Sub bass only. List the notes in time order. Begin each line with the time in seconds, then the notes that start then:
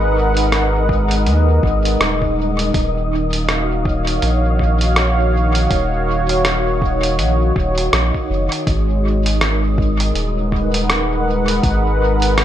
Already playing: G#1
1.26 D#2
1.63 G#1
2.00 D#1
2.74 D#1
4.22 A#1
5.71 D#1
7.18 A#1
7.56 D#1
7.92 A#1
8.30 F#1
8.67 G#1
10.14 D#1
11.63 G#1